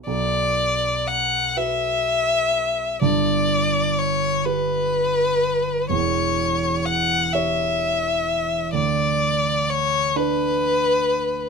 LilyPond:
<<
  \new Staff \with { instrumentName = "Violin" } { \time 6/8 \key b \minor \tempo 4. = 42 d''4 fis''8 e''4. | d''4 cis''8 b'4. | cis''4 fis''8 e''4. | d''4 cis''8 b'4. | }
  \new Staff \with { instrumentName = "Grand piano" } { \time 6/8 \key b \minor b,,4. <fis' b'>4. | <g,, g,>4. <g' b'>4. | <e,, e,>4. <g' cis''>4. | d,4. <d' b'>4. | }
>>